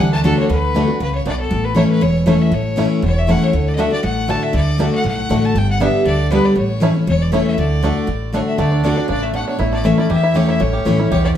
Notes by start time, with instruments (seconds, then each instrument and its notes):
0.00 upright bass D2, steel-string acoustic guitar D3, five-string banjo D4, fiddle F#5
0.13 five-string banjo A3, fiddle A5
0.24 steel-string acoustic guitar D3 A3 D4 F#4, five-string banjo D4, fiddle A4
0.38 five-string banjo D4, fiddle C#5
0.49 upright bass D2, steel-string acoustic guitar D3, fiddle B4
0.75 steel-string acoustic guitar D3 A3 D4 F#4, five-string banjo A3 D4
0.87 steel-string acoustic guitar D4 F#4
1.00 upright bass C#2, steel-string acoustic guitar C#3, fiddle B4
1.15 fiddle C#5
1.25 upright bass B1, steel-string acoustic guitar B2, five-string banjo A3 D4, fiddle D5
1.40 fiddle A4
1.51 upright bass A1, steel-string acoustic guitar A2
1.65 fiddle B4
1.75 steel-string acoustic guitar E3 A3 C#4 E4, five-string banjo A3 C#4 E4, fiddle C#5
1.90 fiddle B4
2.01 upright bass E1, steel-string acoustic guitar E2, fiddle C#5
2.26 steel-string acoustic guitar E3 A3 C#4 E4, five-string banjo A3 C#4 E4, fiddle C#5
2.42 fiddle E5
2.52 upright bass A1, steel-string acoustic guitar A2, fiddle C#5
2.76 steel-string acoustic guitar E3 A3 C#4 E4, five-string banjo A3 C#4 E4
3.02 upright bass E1, steel-string acoustic guitar E2, fiddle C#5
3.18 fiddle E5
3.27 steel-string acoustic guitar E3 A3 C#4 E4, five-string banjo A3 C#4 E4, fiddle F#5
3.44 fiddle C#5
3.53 upright bass D2, steel-string acoustic guitar D3
3.69 fiddle D5
3.75 steel-string acoustic guitar D3 A3 D4, five-string banjo A3, fiddle D#5
3.80 five-string banjo D4, steel-string acoustic guitar F#4, fiddle E5
3.90 steel-string acoustic guitar D4 F#4, fiddle D5
4.03 upright bass A1, steel-string acoustic guitar A2, fiddle F#5
4.27 steel-string acoustic guitar D3 A3 D4 F#4, five-string banjo A3 D4, fiddle A5
4.43 fiddle E5
4.53 upright bass D2, steel-string acoustic guitar D3, fiddle D5
4.78 steel-string acoustic guitar D3 A3 D4 F#4, five-string banjo A3 D4
4.95 fiddle F#5
5.04 upright bass B1, steel-string acoustic guitar A2, fiddle F#5
5.29 upright bass A1, steel-string acoustic guitar D3 A3 D4 F#4, five-string banjo A3 D4
5.45 fiddle A5
5.55 upright bass G1, steel-string acoustic guitar G2, fiddle G5
5.71 fiddle F#5
5.80 steel-string acoustic guitar D3 G3 B3 G4, five-string banjo G3 B3 D4, fiddle E5
6.05 upright bass D2, steel-string acoustic guitar D3, fiddle D5
6.30 steel-string acoustic guitar D3 G3 B3 G4, five-string banjo G3 B3 D4, fiddle B4
6.45 fiddle D5
6.56 upright bass A1, steel-string acoustic guitar A2, fiddle C#5
6.80 steel-string acoustic guitar E3 A3 C#4 E4, five-string banjo A3 C#4 E4
6.94 steel-string acoustic guitar C#4 E4
7.07 upright bass E1, steel-string acoustic guitar E2, fiddle C#5
7.22 fiddle D5
7.32 steel-string acoustic guitar E3 A3 C#4 E4, five-string banjo A3 C#4 E4, fiddle C#5
7.46 fiddle E5
7.57 upright bass D2, steel-string acoustic guitar D3, fiddle D5
7.83 steel-string acoustic guitar D3 A3 D4 F#4, five-string banjo A3 D4
8.07 upright bass A1, steel-string acoustic guitar A2
8.33 steel-string acoustic guitar D3 A3 D4 F#4, five-string banjo A3 D4, fiddle C#5
8.47 fiddle E5
8.58 upright bass D2, steel-string acoustic guitar D3, five-string banjo A3, fiddle D5
8.72 five-string banjo D4
8.84 steel-string acoustic guitar D3 A3 D4 F#4, five-string banjo D4, fiddle D5
8.96 five-string banjo D4, steel-string acoustic guitar D4 F#4
9.08 upright bass A1, steel-string acoustic guitar C#3, five-string banjo D4, fiddle D5
9.23 five-string banjo A3, fiddle E5
9.34 steel-string acoustic guitar B2, five-string banjo D4, fiddle F#5
9.48 five-string banjo D4, fiddle C#5
9.59 upright bass A1, steel-string acoustic guitar A2, five-string banjo E4
9.73 five-string banjo A3, fiddle D5
9.84 steel-string acoustic guitar E3 A3 C#4 E4, five-string banjo C#4, fiddle E5
9.97 steel-string acoustic guitar C#4 E4, five-string banjo E4, fiddle D5
10.10 steel-string acoustic guitar E2, upright bass E2, five-string banjo G4, fiddle E5
10.23 five-string banjo E4
10.34 steel-string acoustic guitar E3 A3 C#4 E4, five-string banjo G4, fiddle C#5
10.48 five-string banjo E4, fiddle E5
10.60 upright bass A1, steel-string acoustic guitar A2, five-string banjo C#4, fiddle C#5
10.73 five-string banjo G4
10.85 upright bass A1, steel-string acoustic guitar E3 A3 C#4 E4, five-string banjo C#4
10.98 steel-string acoustic guitar C#4 E4, five-string banjo E4
11.11 upright bass B1, steel-string acoustic guitar E2, five-string banjo G4, fiddle C#5
11.25 five-string banjo C#4, fiddle D5